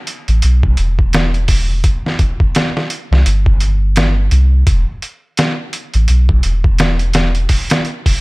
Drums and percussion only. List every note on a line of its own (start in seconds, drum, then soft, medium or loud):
0.07 closed hi-hat medium
0.28 closed hi-hat soft
0.42 closed hi-hat medium
0.63 kick medium
0.77 closed hi-hat medium
0.99 kick medium
1.13 snare loud
1.13 closed hi-hat medium
1.34 closed hi-hat soft
1.48 kick medium
1.48 open hi-hat medium
1.84 kick loud
1.84 closed hi-hat medium
2.06 snare soft
2.19 kick medium
2.19 closed hi-hat medium
2.40 kick medium
2.55 snare loud
2.55 closed hi-hat medium
2.77 snare soft
2.90 closed hi-hat medium
3.13 snare soft
3.26 closed hi-hat medium
3.46 kick medium
3.60 closed hi-hat medium
3.96 snare loud
3.96 closed hi-hat medium
4.31 closed hi-hat medium
4.67 kick loud
4.67 closed hi-hat medium
5.02 closed hi-hat medium
5.37 snare loud
5.37 closed hi-hat medium
5.73 closed hi-hat medium
5.94 closed hi-hat soft
6.08 closed hi-hat medium
6.29 kick medium
6.43 closed hi-hat medium
6.64 kick medium
6.79 snare loud
6.79 closed hi-hat medium
6.99 closed hi-hat soft
7.13 snare loud
7.13 closed hi-hat medium
7.35 closed hi-hat soft
7.49 kick medium
7.49 open hi-hat medium
7.70 snare loud
7.70 closed hi-hat medium
7.85 closed hi-hat soft
8.06 kick medium
8.06 open hi-hat medium